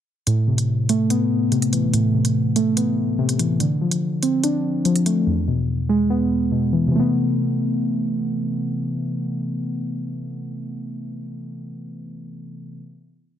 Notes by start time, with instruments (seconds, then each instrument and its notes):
0.27 synth keys A2, closed hi-hat
0.48 synth keys C3
0.58 closed hi-hat
0.89 synth keys A3, closed hi-hat
1.10 synth keys B3, closed hi-hat
1.52 synth keys C3, closed hi-hat
1.62 closed hi-hat
1.73 synth keys E3, closed hi-hat
1.93 synth keys A2, closed hi-hat
2.14 synth keys C3
2.25 closed hi-hat
2.56 synth keys A3, closed hi-hat
2.77 synth keys B3, closed hi-hat
3.18 synth keys C3
3.29 closed hi-hat
3.39 synth keys E3, closed hi-hat
3.60 synth keys D3, closed hi-hat
3.81 synth keys F3
3.91 closed hi-hat
4.23 synth keys C4, closed hi-hat
4.44 synth keys D4, closed hi-hat
4.85 synth keys F3, closed hi-hat
4.96 closed hi-hat
5.06 synth keys A3, closed hi-hat
5.27 synth keys E2
5.48 synth keys B2
5.89 synth keys G#3
6.10 synth keys B3
6.52 synth keys B2
6.73 synth keys E3
6.87 synth keys C3
6.91 synth keys E3 A3
6.99 synth keys B3